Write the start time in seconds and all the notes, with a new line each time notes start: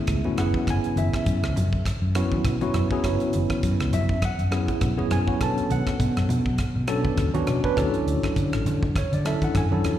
Already playing: A3 B3 C#4 E4 G#4 E5
0.07 C#2, kick, cross-stick, closed hi-hat
0.24 A3 B3 C#4 E4 F#4, muted fretless electric bass stroke, high conga
0.37 F#1 F#3 B3 C#4 E4 G#4 F#5, cross-stick, closed hi-hat
0.54 kick
0.67 F#1 G#5, kick, cross-stick, closed hi-hat
0.84 closed hi-hat
0.96 F#1 E5, closed hi-hat, high conga
1.14 kick, cross-stick, closed hi-hat
1.26 F#2, kick, closed hi-hat
1.43 C#2, cross-stick, closed hi-hat
1.55 F#2, closed hi-hat, low conga
1.73 kick
1.86 kick, cross-stick, closed hi-hat
2.02 F#2
2.15 F#3 B3 C#4 E4 F#4, cross-stick, closed hi-hat
2.32 muted fretless electric bass stroke, kick, high conga
2.45 B1, kick, cross-stick, closed hi-hat
2.61 F#3 B3 C#4 E4 F#4, muted fretless electric bass stroke, closed hi-hat, high conga
2.74 F#2, cross-stick, closed hi-hat, low conga
2.91 F#3 B3 C#4 E4 G#4, kick
3.04 F#1 F#3 B3 C#4 E4 F#4, kick, cross-stick, closed hi-hat
3.20 closed hi-hat
3.33 F#1, closed hi-hat, high conga
3.50 kick, cross-stick, closed hi-hat
3.63 F#2, kick, closed hi-hat
3.79 C#2, cross-stick, closed hi-hat
3.92 F#2 E5, closed hi-hat, low conga
4.09 kick
4.22 F#5, kick, cross-stick, closed hi-hat
4.39 F#2, closed hi-hat
4.51 F#3 B3 C#4 E4 G#4, cross-stick, closed hi-hat
4.68 muted fretless electric bass stroke, kick, closed hi-hat, high conga
4.81 B1, kick, cross-stick, closed hi-hat
4.97 F#3 B3 C#4 E4 G#4, muted fretless electric bass stroke, high conga
5.11 F#2 G#5, cross-stick, closed hi-hat, low conga
5.27 F#3 B3 C#4 E4 F#4, kick
5.40 B1 F#3 B3 C#4 D4 A4 A5, kick, cross-stick, closed hi-hat
5.57 muted fretless electric bass stroke, closed hi-hat
5.70 B1 F#5, closed hi-hat, high conga
5.87 kick, cross-stick, closed hi-hat
6.00 B2, kick, closed hi-hat
6.17 F#2, cross-stick, closed hi-hat
6.29 B2, closed hi-hat, low conga
6.46 kick
6.58 kick, cross-stick, closed hi-hat
6.76 B2
6.87 F#3 B3 C#4 D4 A4, cross-stick, closed hi-hat
7.05 kick, high conga
7.17 D2, kick, cross-stick, closed hi-hat
7.34 F#3 B3 C#4 D4 F#4, muted fretless electric bass stroke, closed hi-hat, high conga
7.47 B2, cross-stick, closed hi-hat, low conga
7.64 F#3 B3 C#4 D4 B4, kick
7.76 D2 F#3 C#4 D4 E4 A4, kick, cross-stick, closed hi-hat
7.94 closed hi-hat
8.07 D2, closed hi-hat
8.23 kick, cross-stick, closed hi-hat
8.36 D3, kick, closed hi-hat
8.53 A1, cross-stick, closed hi-hat
8.66 D3, closed hi-hat, low conga
8.83 kick, low conga
8.96 C#5, kick, cross-stick, closed hi-hat, high conga
9.13 D3 D5, closed hi-hat
9.25 F#3 C#4 D4 E4 A4 E5, cross-stick, closed hi-hat
9.42 F#5, muted fretless electric bass stroke, kick, closed hi-hat, high conga
9.55 F#2 G#5, kick, cross-stick, closed hi-hat
9.71 F#3 C#4 D4 E4 A4, high conga
9.84 E2, cross-stick, closed hi-hat, low conga